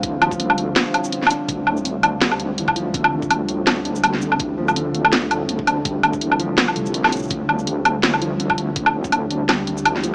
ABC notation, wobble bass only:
X:1
M:4/4
L:1/8
Q:"Swing 16ths" 1/4=165
K:Dm
V:1 name="Wobble bass" clef=bass
D,,4 z4 | D,,6 D,,2- | D,,4 D,,4 | D,,6 D,,2- |
D,,4 z C,,3 | D,,6 D,,2- | D,,4 D,,4 |]